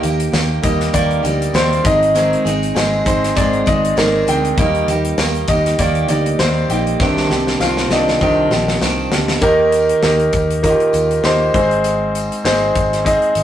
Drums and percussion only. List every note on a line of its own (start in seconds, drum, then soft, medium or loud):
0.03 closed hi-hat medium
0.03 tambourine soft
0.20 closed hi-hat medium
0.20 tambourine soft
0.34 snare loud
0.34 tambourine medium
0.63 kick medium
0.63 closed hi-hat medium
0.63 tambourine soft
0.80 snare soft
0.80 closed hi-hat medium
0.94 kick medium
0.94 closed hi-hat loud
0.94 tambourine medium
1.11 closed hi-hat soft
1.25 closed hi-hat medium
1.25 tambourine soft
1.41 closed hi-hat medium
1.41 tambourine soft
1.54 snare medium
1.54 tambourine medium
1.72 closed hi-hat soft
1.72 tambourine soft
1.85 kick loud
1.85 closed hi-hat medium
1.85 tambourine medium
2.03 closed hi-hat soft
2.15 closed hi-hat medium
2.15 tambourine soft
2.33 closed hi-hat soft
2.46 closed hi-hat medium
2.46 tambourine soft
2.63 closed hi-hat soft
2.63 tambourine soft
2.76 snare loud
2.76 tambourine medium
2.93 tambourine soft
3.06 kick medium
3.06 closed hi-hat medium
3.06 tambourine soft
3.24 snare soft
3.24 closed hi-hat medium
3.37 kick medium
3.37 closed hi-hat medium
3.37 tambourine medium
3.53 closed hi-hat soft
3.66 kick medium
3.66 closed hi-hat medium
3.66 tambourine medium
3.85 closed hi-hat medium
3.97 snare loud
3.97 tambourine medium
4.15 tambourine soft
4.27 closed hi-hat medium
4.27 tambourine medium
4.45 closed hi-hat soft
4.58 kick loud
4.58 closed hi-hat medium
4.58 tambourine medium
4.75 closed hi-hat soft
4.88 closed hi-hat medium
4.88 tambourine soft
5.05 closed hi-hat medium
5.18 snare medium
5.18 tambourine medium
5.35 closed hi-hat soft
5.48 kick medium
5.48 closed hi-hat medium
5.48 tambourine soft
5.66 snare soft
5.66 closed hi-hat medium
5.79 kick medium
5.79 closed hi-hat medium
5.79 tambourine soft
5.95 closed hi-hat soft
6.08 closed hi-hat medium
6.08 tambourine soft
6.26 closed hi-hat soft
6.39 snare medium
6.39 tambourine medium
6.58 tambourine soft
6.70 closed hi-hat medium
6.70 tambourine soft
6.87 closed hi-hat soft
7.00 kick loud
7.00 snare medium
7.00 tambourine medium
7.17 snare soft
7.30 snare medium
7.30 tambourine medium
7.47 snare medium
7.47 tambourine soft
7.60 snare medium
7.60 tambourine medium
7.77 snare medium
7.91 snare medium
7.91 tambourine soft
8.08 snare medium
8.21 kick medium
8.21 tambourine medium
8.51 snare medium
8.51 tambourine soft
8.68 snare medium
8.68 tambourine soft
8.82 snare medium
8.82 tambourine medium
8.99 tambourine soft
9.12 snare loud
9.12 tambourine medium
9.28 snare medium
9.41 kick loud
9.41 closed hi-hat medium
9.41 tambourine soft
9.72 closed hi-hat medium
9.72 tambourine soft
9.89 closed hi-hat soft
10.03 snare medium
10.03 tambourine medium
10.20 closed hi-hat soft
10.33 kick medium
10.33 closed hi-hat medium
10.33 tambourine soft
10.50 closed hi-hat soft
10.63 kick medium
10.63 closed hi-hat medium
10.63 tambourine medium
10.80 closed hi-hat soft
10.93 closed hi-hat medium
10.93 tambourine medium
11.11 closed hi-hat soft
11.11 tambourine soft
11.24 snare medium
11.24 tambourine medium
11.42 tambourine soft
11.54 kick loud
11.54 closed hi-hat medium
11.54 tambourine soft
11.71 closed hi-hat soft
11.84 closed hi-hat medium
11.84 tambourine soft
12.15 closed hi-hat medium
12.15 tambourine soft
12.31 closed hi-hat soft
12.31 tambourine soft
12.45 snare loud
12.45 tambourine medium
12.62 tambourine soft
12.75 kick medium
12.75 closed hi-hat medium
12.75 tambourine soft
12.93 snare soft
12.93 closed hi-hat soft
13.06 kick medium
13.06 closed hi-hat medium
13.06 tambourine medium
13.22 closed hi-hat soft
13.35 closed hi-hat medium
13.35 tambourine soft